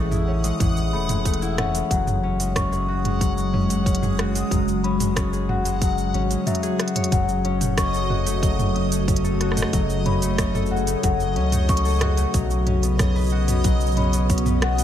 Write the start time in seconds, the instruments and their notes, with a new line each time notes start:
Already playing: analog synth bass A1, harp E3 G#3 A3 C#4 E4, ambient pad G#4 C#5, synth texture F#5 D#6, celesta C#6
0.11 harp E4, mid tom, shaker
0.28 harp C#4
0.44 harp G#3, closed hi-hat, shaker
0.60 analog synth bass A1, harp E3, kick, closed hi-hat, mid tom, shaker
0.77 shaker
0.93 analog synth bass E1, harp A3, celesta B5
1.09 harp G#3, closed hi-hat, mid tom, shaker
1.25 harp A3, kick, closed hi-hat, shaker
1.34 closed hi-hat
1.42 harp E4, shaker
1.58 harp C#4, celesta F#5, cross-stick, closed hi-hat, mid tom
1.75 harp G#3, closed hi-hat, shaker
1.91 analog synth bass F#1, ambient pad C#3, harp F#3, celesta F#5, kick, closed hi-hat, shaker
2.07 mid tom, shaker
2.23 harp C#4
2.28 ambient pad G#3
2.40 harp G#3, closed hi-hat, shaker
2.56 harp C#4, celesta C#6, kick, cross-stick, closed hi-hat, mid tom, shaker
2.72 harp G#4, shaker
2.88 harp F#4
3.05 harp G#3, closed hi-hat, mid tom
3.21 harp F#3, kick, closed hi-hat, shaker
3.32 ambient pad F#4
3.38 shaker
3.53 harp C#4, mid tom
3.70 harp G#3, closed hi-hat, shaker
3.86 harp C#4, kick, closed hi-hat, shaker
3.95 closed hi-hat
4.02 harp G#4, mid tom, shaker
4.19 harp F#4, cross-stick, closed hi-hat
4.35 harp G#3, closed hi-hat, shaker
4.51 analog synth bass F#1, harp F#3, kick, closed hi-hat, mid tom, shaker
4.68 shaker
4.84 harp C#4, celesta B5, closed hi-hat
5.00 harp G#3, closed hi-hat, mid tom, shaker
5.16 harp C#4, kick, cross-stick, closed hi-hat, shaker
5.33 harp G#4, shaker
5.49 harp F#4, celesta F#5, mid tom
5.65 harp G#3, closed hi-hat, shaker
5.82 harp F#3, celesta F#5, kick, closed hi-hat, shaker
5.98 shaker
6.14 analog synth bass G#1, harp C#4, closed hi-hat
6.30 harp G#3, closed hi-hat, shaker
6.47 harp F#3, celesta E5, closed hi-hat, mid tom, shaker
6.55 closed hi-hat
6.63 harp G#4, closed hi-hat, shaker
6.79 harp F#4, cross-stick, closed hi-hat
6.88 closed hi-hat
6.95 harp C#5, closed hi-hat, mid tom
7.04 closed hi-hat
7.12 analog synth bass F#1, harp F#3, synth texture D#5 D#6, celesta F#5, kick, closed hi-hat, mid tom, shaker
7.29 shaker
7.45 harp C#4, closed hi-hat
7.61 harp A3, closed hi-hat, mid tom, shaker
7.77 harp C#4, celesta C#6, kick, cross-stick, closed hi-hat, shaker
7.90 ambient pad A3, harp A4, shaker
8.10 harp F#4, mid tom
8.26 harp A3, closed hi-hat, shaker
8.43 harp F#3, kick, closed hi-hat, shaker
8.59 mid tom, shaker
8.75 harp C#4, closed hi-hat
8.92 harp A3, closed hi-hat, shaker
9.08 harp C#4, kick, closed hi-hat, mid tom, shaker
9.16 closed hi-hat
9.24 harp A4, shaker
9.41 harp F#4, cross-stick, closed hi-hat
9.52 cross-stick
9.57 harp A3, closed hi-hat, mid tom, shaker
9.62 cross-stick
9.73 analog synth bass F#1, harp F#3, kick, closed hi-hat, shaker
9.90 shaker
10.06 harp C#4, celesta B5, closed hi-hat, mid tom
10.22 harp A3, closed hi-hat, shaker
10.38 harp C#4, kick, cross-stick, closed hi-hat, shaker
10.55 harp A4, mid tom, shaker
10.66 shaker
10.71 harp F#4, celesta F#5
10.77 shaker
10.87 harp A3, closed hi-hat, shaker
11.03 analog synth bass F#1, harp F#3, celesta F#5, kick, closed hi-hat, mid tom, shaker
11.20 shaker
11.36 analog synth bass C#2, harp C#4, closed hi-hat
11.52 harp A3, closed hi-hat, mid tom, shaker
11.69 harp C#4, celesta C#6, kick, closed hi-hat, shaker
11.77 closed hi-hat
11.85 harp A4, shaker
11.88 shaker
11.91 shaker
11.93 shaker
11.96 shaker
11.99 harp F#4, cross-stick, closed hi-hat, mid tom, shaker
12.17 harp A3, closed hi-hat, shaker
12.34 analog synth bass B1, harp F#3, kick, closed hi-hat, shaker
12.50 shaker
12.66 harp C#4, closed hi-hat, mid tom
12.83 harp B3, closed hi-hat, shaker
12.90 ambient pad B3
12.99 harp C#4, kick, cross-stick, closed hi-hat, mid tom, shaker
13.16 harp B4, shaker
13.18 shaker
13.21 shaker
13.24 shaker
13.27 shaker
13.29 harp F#4, shaker
13.48 harp B3, closed hi-hat, mid tom, shaker
13.64 harp F#3, kick, closed hi-hat, shaker
13.81 shaker
13.86 shaker
13.92 shaker
13.97 harp C#4, celesta B5, closed hi-hat, mid tom
14.13 harp B3, closed hi-hat, shaker
14.30 harp C#4, kick, closed hi-hat, shaker
14.38 closed hi-hat
14.46 harp B4, mid tom, shaker
14.62 harp F#4, celesta F#5, cross-stick, closed hi-hat
14.78 harp B3, closed hi-hat, shaker